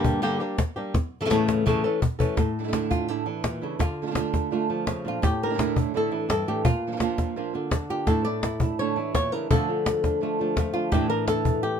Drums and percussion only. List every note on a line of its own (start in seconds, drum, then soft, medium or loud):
0.04 cajon bass medium
0.58 cajon bass medium
0.58 cajon slap loud
0.77 cajon slap soft
0.94 cajon bass medium
0.94 cajon slap soft
1.31 cajon slap medium
1.49 cajon slap medium
1.67 cajon bass medium
2.02 cajon bass medium
2.20 cajon bass medium
2.37 cajon bass medium
2.37 cajon slap soft
2.73 cajon slap medium
2.91 cajon bass medium
2.91 cajon slap soft
3.44 cajon slap medium
3.80 cajon bass medium
3.80 cajon slap soft
4.15 cajon slap medium
4.34 cajon bass medium
4.34 cajon slap soft
4.87 cajon slap medium
5.06 cajon slap soft
5.23 cajon bass loud
5.23 cajon slap soft
5.59 cajon slap medium
5.76 cajon bass medium
6.30 cajon slap medium
6.65 cajon bass medium
7.00 cajon slap medium
7.18 cajon bass medium
7.18 cajon slap soft
7.71 cajon bass medium
7.71 cajon slap loud
8.07 cajon bass medium
8.07 cajon slap soft
8.43 cajon slap medium
8.60 cajon bass medium
9.15 cajon bass medium
9.15 cajon slap medium
9.33 cajon slap soft
9.51 cajon bass loud
9.86 cajon slap medium
10.04 cajon bass medium
10.04 cajon slap soft
10.57 cajon bass medium
10.57 cajon slap medium
10.75 cajon slap soft
10.92 cajon bass medium
10.92 cajon slap soft
11.28 cajon slap medium
11.45 cajon bass medium